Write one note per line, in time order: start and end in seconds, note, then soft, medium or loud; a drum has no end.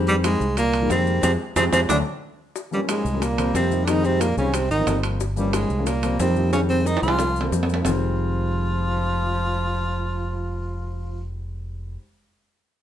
0.00 0.35 F2 medium
0.00 0.37 D#3 medium
0.00 0.38 G3 medium
0.00 0.38 G#3 medium
0.00 0.38 C4 medium
0.08 0.16 G2 medium
0.08 0.15 G3 medium
0.08 maracas soft
0.24 0.55 G#2 medium
0.24 0.55 G#3 medium
0.24 high bongo medium
0.24 high timbale medium
0.24 low timbale medium
0.24 maracas medium
0.40 0.86 C2 medium
0.40 maracas soft
0.57 0.88 A#2 medium
0.57 0.88 A#3 medium
0.57 high bongo medium
0.57 high timbale medium
0.57 maracas medium
0.73 high timbale medium
0.73 maracas soft
0.82 1.16 D#3 medium
0.82 1.17 G3 medium
0.82 1.17 G#3 medium
0.82 1.17 A#3 medium
0.90 1.21 F2 medium
0.90 1.21 C3 medium
0.90 1.22 C4 medium
0.90 high bongo medium
0.90 low bongo medium
0.90 low timbale medium
0.90 maracas medium
1.07 maracas soft
1.23 1.35 F2 loud
1.23 1.31 C3 medium
1.23 1.34 F3 medium
1.23 1.34 G#3 medium
1.23 1.34 C4 medium
1.23 1.32 C4 medium
1.23 high bongo loud
1.23 high timbale medium
1.23 maracas medium
1.56 1.68 F2 medium
1.56 1.65 C3 medium
1.56 1.67 F3 medium
1.56 1.67 G#3 medium
1.56 1.67 C4 medium
1.56 1.64 C4 medium
1.56 high bongo medium
1.56 high timbale loud
1.56 maracas medium
1.73 1.85 F2 medium
1.73 1.81 C3 medium
1.73 1.83 F3 medium
1.73 1.83 G#3 medium
1.73 1.83 C4 medium
1.73 1.81 C4 medium
1.73 high bongo medium
1.73 high timbale loud
1.73 maracas loud
1.89 2.01 D2 medium
1.89 1.97 D3 medium
1.89 2.00 D3 medium
1.89 2.00 F#3 medium
1.89 2.00 A3 medium
1.89 1.97 D4 medium
1.89 high bongo medium
1.89 high timbale medium
1.89 maracas medium
2.56 high bongo medium
2.56 maracas medium
2.71 2.80 G2 medium
2.71 3.00 F3 medium
2.71 3.01 G3 medium
2.71 2.81 G3 medium
2.71 3.01 A#3 medium
2.71 3.01 C#4 medium
2.71 maracas soft
2.89 3.23 G#2 medium
2.89 3.24 G#3 medium
2.89 high bongo medium
2.89 high timbale loud
2.89 low timbale medium
2.89 maracas medium
3.05 3.51 C2 medium
3.05 maracas soft
3.13 3.21 F3 medium
3.13 3.22 G3 medium
3.13 3.22 A#3 medium
3.13 3.22 C#4 medium
3.22 3.54 A#2 medium
3.22 3.55 A#3 medium
3.22 high bongo medium
3.22 high timbale medium
3.22 maracas medium
3.37 3.49 F3 medium
3.37 3.49 G3 medium
3.37 3.50 A#3 medium
3.37 3.50 C4 medium
3.37 high timbale medium
3.37 maracas soft
3.54 4.32 F2 medium
3.54 3.85 C3 medium
3.54 3.66 F3 medium
3.54 3.66 G3 medium
3.54 3.66 A#3 medium
3.54 3.66 C4 medium
3.54 3.86 C4 medium
3.54 high bongo medium
3.54 low bongo medium
3.54 low timbale medium
3.54 maracas medium
3.70 3.82 F3 medium
3.70 3.83 G3 medium
3.70 3.83 A#3 medium
3.70 3.83 D#4 medium
3.70 maracas soft
3.83 3.89 D3 medium
3.83 4.22 D#3 medium
3.83 3.91 D4 medium
3.87 4.05 D#3 medium
3.87 4.22 G3 medium
3.87 4.23 G#3 medium
3.87 4.23 C4 medium
3.87 4.07 D#4 loud
3.87 high bongo medium
3.87 high timbale medium
3.87 maracas medium
4.04 4.22 C3 medium
4.04 4.23 C4 medium
4.04 high bongo soft
4.04 maracas soft
4.21 4.37 A#2 medium
4.21 4.37 A#3 medium
4.21 high bongo medium
4.21 high timbale medium
4.21 low timbale medium
4.21 maracas medium
4.37 4.68 C2 medium
4.37 4.55 C#3 medium
4.37 4.54 D#3 medium
4.37 4.54 G3 medium
4.37 4.54 G#3 medium
4.37 4.54 C4 medium
4.37 4.56 C#4 medium
4.37 high bongo soft
4.37 maracas soft
4.54 4.70 C3 medium
4.54 4.70 C4 medium
4.54 high bongo medium
4.54 high timbale medium
4.54 maracas medium
4.70 4.86 G#1 medium
4.70 5.01 D#3 medium
4.70 5.01 D#4 medium
4.70 maracas soft
4.78 5.19 F3 medium
4.78 5.19 G3 medium
4.78 5.19 A#3 medium
4.78 5.20 C4 medium
4.87 5.64 G1 medium
4.87 high bongo medium
4.87 low bongo medium
4.87 high timbale medium
4.87 low timbale medium
4.87 maracas medium
5.03 high bongo soft
5.03 high timbale medium
5.03 maracas soft
5.20 high bongo medium
5.20 maracas medium
5.36 5.52 G2 medium
5.36 5.65 F3 medium
5.36 5.66 G3 medium
5.36 5.53 G3 medium
5.36 5.66 A#3 medium
5.36 5.66 C#4 medium
5.36 maracas soft
5.53 5.88 G#2 medium
5.53 5.88 G#3 medium
5.53 high bongo medium
5.53 high timbale medium
5.53 low timbale medium
5.53 maracas medium
5.70 6.16 C2 medium
5.70 maracas soft
5.78 5.86 F3 medium
5.78 5.86 G3 medium
5.78 5.87 A#3 medium
5.78 5.87 C#4 medium
5.86 6.19 A#2 medium
5.86 6.20 A#3 medium
5.86 high bongo medium
5.86 high timbale medium
5.86 maracas medium
6.03 6.14 F3 medium
6.03 6.15 G3 medium
6.03 6.15 A#3 medium
6.03 6.15 C4 medium
6.03 high timbale medium
6.03 maracas soft
6.19 6.97 F2 medium
6.19 6.50 C3 medium
6.19 6.31 F3 medium
6.19 6.31 G3 medium
6.19 6.31 A#3 medium
6.19 6.51 C4 medium
6.19 6.32 D#4 medium
6.19 high bongo medium
6.19 low bongo medium
6.19 low timbale medium
6.19 maracas medium
6.36 6.48 F3 medium
6.36 6.48 G3 medium
6.36 6.48 A#3 medium
6.36 6.48 D#4 medium
6.36 maracas soft
6.52 6.60 C#3 medium
6.52 6.87 D#3 medium
6.52 6.87 G3 medium
6.52 6.88 G#3 medium
6.52 6.88 C4 medium
6.52 6.60 C#4 medium
6.52 high bongo medium
6.52 high timbale medium
6.52 maracas medium
6.69 6.86 C3 medium
6.69 6.88 C4 medium
6.69 high bongo soft
6.69 maracas soft
6.85 7.01 D#3 medium
6.85 7.03 D#4 medium
6.85 high bongo medium
6.85 maracas medium
6.97 high timbale medium
7.02 7.48 C2 medium
7.02 7.18 D#3 medium
7.02 7.48 F3 medium
7.02 7.19 G3 medium
7.02 7.19 G#3 medium
7.02 7.19 C4 medium
7.02 7.49 F4 medium
7.02 high bongo soft
7.02 maracas soft
7.08 high timbale medium
7.19 high bongo medium
7.19 low timbale medium
7.19 maracas medium
7.36 maracas soft
7.41 7.84 F3 medium
7.41 7.83 G3 medium
7.41 7.84 A#3 medium
7.41 7.85 C4 medium
7.41 low timbale medium
7.51 7.81 F2 medium
7.51 high bongo medium
7.51 low bongo medium
7.51 maracas medium
7.63 low timbale medium
7.69 high bongo soft
7.69 maracas soft
7.74 low timbale medium
7.82 11.96 F1 medium
7.82 11.94 D#3 medium
7.82 11.26 F3 medium
7.82 11.95 G3 medium
7.82 11.26 F4 medium
7.82 low bongo medium
7.82 low timbale medium
7.82 maracas medium
7.87 11.97 G#3 medium
7.87 11.98 C4 medium